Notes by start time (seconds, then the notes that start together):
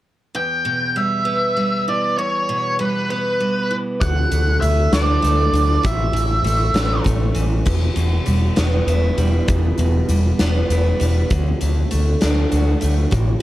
0.35 E2 G5
0.65 B2
0.96 G3 E5
1.25 B3
1.57 G3
1.88 E3 D5
2.18 E2 C#5
2.49 B2
2.79 G3 B4
3.10 B3 B4
3.40 G3
3.71 E3
4.01 D2 F#5, kick, closed hi-hat
4.31 D2 A3, closed hi-hat
4.61 D2 A3 E5, closed hi-hat
4.93 D2 D4 D5, snare, closed hi-hat
5.22 D2 A3, closed hi-hat
5.53 D2 D3, closed hi-hat
5.83 A1 A2 E5, kick, closed hi-hat
6.13 A1 E3, closed hi-hat
6.43 A1 A3, closed hi-hat
6.74 A1 C#4, snare, closed hi-hat
7.04 A1 A3, kick, closed hi-hat
7.34 A1 E3, closed hi-hat
7.66 E1 E2, kick, crash
7.96 E1 B2, closed hi-hat
8.26 E1 G3, closed hi-hat
8.56 E1 B3, snare, closed hi-hat
8.87 E1 E4, closed hi-hat
9.18 E1 G3, closed hi-hat
9.48 E1 E2, kick, closed hi-hat
9.78 E1 B2, closed hi-hat
10.09 E1 G3, closed hi-hat
10.39 E1 B3, snare, closed hi-hat
10.70 E1 E4, closed hi-hat
11.00 E1 G3, closed hi-hat
11.30 D2 D3, kick, closed hi-hat
11.61 D2 A3, closed hi-hat
11.91 D2 A3, closed hi-hat
12.21 D2 D4, snare, closed hi-hat
12.52 D2 F#4, closed hi-hat
12.81 D2 A3, closed hi-hat
13.11 A1 A2, kick, closed hi-hat